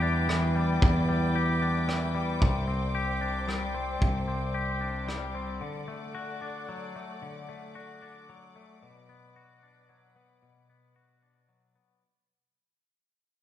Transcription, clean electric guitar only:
0.00 0.55 E2 soft
0.00 0.55 G3 soft
0.00 1.61 D4 soft
0.00 1.35 G4 medium
0.29 1.62 E3 soft
0.55 1.08 G3 soft
0.82 2.15 E2 medium
1.09 2.14 G3 soft
1.35 2.94 G4 medium
1.62 2.44 D4 soft
1.88 2.42 E3 soft
2.15 2.67 G3 soft
2.41 3.75 C3 soft
2.68 3.73 C4 soft
2.95 4.28 G4 medium
3.21 4.80 D4 soft
3.48 4.81 G3 soft
3.75 4.27 C4 soft
4.01 5.35 C3 soft
4.28 5.34 C4 soft
4.54 5.62 G4 medium
4.81 6.41 D4 soft
5.08 5.61 G3 soft
5.35 5.62 C4 soft
5.61 6.95 D3 soft
5.88 6.94 A3 soft
6.15 7.75 F#4 medium
6.42 8.02 D4 soft
6.69 8.29 F#3 soft
6.96 7.48 A3 soft
7.22 8.56 D3 soft
7.49 8.55 A3 soft
7.75 9.36 F#4 soft
8.02 9.62 D4 soft
8.29 9.89 F#3 soft
8.56 8.82 A3 soft
8.83 10.42 B2 soft
9.09 10.16 B3 soft
9.36 10.70 F#4 soft
9.63 10.96 D4 soft
9.89 11.23 F#3 soft
10.16 10.68 B3 soft
10.42 11.76 B2 soft
10.70 11.74 B3 soft
10.96 12.03 F#4 soft
11.23 12.03 D4 soft
11.49 12.03 F#3 soft
11.76 12.03 B3 soft

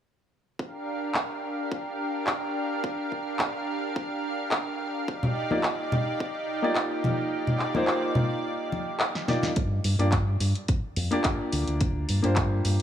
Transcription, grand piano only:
5.51 5.63 A#3 medium
5.51 5.63 D#4 medium
5.51 5.63 F4 medium
5.51 5.63 G4 medium
5.51 5.63 D5 medium
6.62 7.71 A#3 medium
6.62 7.72 D#4 medium
6.62 7.72 F4 medium
6.62 7.72 G4 medium
6.62 7.72 D5 loud
7.74 9.25 A#3 medium
7.74 9.25 D#4 medium
7.74 9.26 F4 medium
7.74 9.26 G4 medium
7.74 9.26 C5 medium
9.28 9.49 A#3 medium
9.28 9.49 D#4 medium
9.28 9.49 F4 medium
9.28 9.49 G4 medium
9.28 9.50 D5 medium
9.99 10.11 A#3 medium
9.99 10.11 D4 medium
9.99 10.11 F4 medium
9.99 10.12 G4 medium
9.99 10.12 D5 medium
11.11 12.20 A#3 medium
11.11 12.20 D4 medium
11.11 12.20 F4 medium
11.11 12.21 G4 medium
11.11 12.21 D5 medium
12.22 12.82 A#3 medium
12.22 12.82 D4 medium
12.22 12.82 F4 medium
12.22 12.82 G4 medium
12.22 12.82 C5 medium

